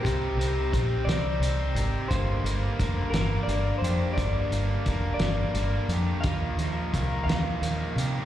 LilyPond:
<<
  \new Staff \with { instrumentName = "Clean electric guitar" } { \time 6/8 \key g \phrygian \tempo 4. = 58 g'4. d''4. | c''4. bes'8 d''8 c''8 | d''4. d''4. | f''4. f''4. | }
  \new Staff \with { instrumentName = "Overdriven electric guitar" } { \time 6/8 \key g \phrygian <c' g'>8 c'8 c'8 c'8 c'8 g'8 | bes8 bes8 bes8 bes8 bes8 g'8 | bes8 bes8 bes8 bes8 bes8 g'8 | f8 f8 bes8 f8 bes8 g'8 | }
  \new Staff \with { instrumentName = "Overdriven electric guitar" } { \clef bass \time 6/8 \key g \phrygian <c g c' ees'>8 <g c' ees'>8 <c g c' ees'>8 <c g c' ees'>8 <c g c' ees'>4 | <g, d g bes d'>8 <g bes d'>8 <d g bes d'>8 <g, d g bes d'>8 <d g bes d'>4 | <g, d g bes d'>8 <g bes d'>8 <d g bes d'>8 <g, d g bes d'>8 <d g bes d'>4 | <ees g bes ees'>8 <g bes ees'>8 <ees g bes ees'>8 <ees g bes ees'>8 <ees g bes ees'>4 | }
  \new Staff \with { instrumentName = "Fingered electric bass" } { \clef bass \time 6/8 \key g \phrygian c,8 c,8 bes,,8 c,8 c,8 aes,,8 | g,,8 g,,8 f,,8 g,,8 g,,8 f,8 | g,,8 g,,8 f,,8 g,,8 g,,8 f,8 | ees,8 ees,8 c,8 ees,8 ees,8 c8 | }
  \new DrumStaff \with { instrumentName = "Drums" } \drummode { \time 6/8 <hh bd>8 hh8 <hh bd>8 <hh sn>8 hh8 hh8 | <hh bd>8 hh8 <hh bd>8 <hh sn>8 hh8 hh8 | <hh bd>8 hh8 <hh bd>8 <hh sn>8 hh8 hh8 | <hh bd>8 hh8 <hh bd>8 <hh sn>8 hh8 hh8 | }
>>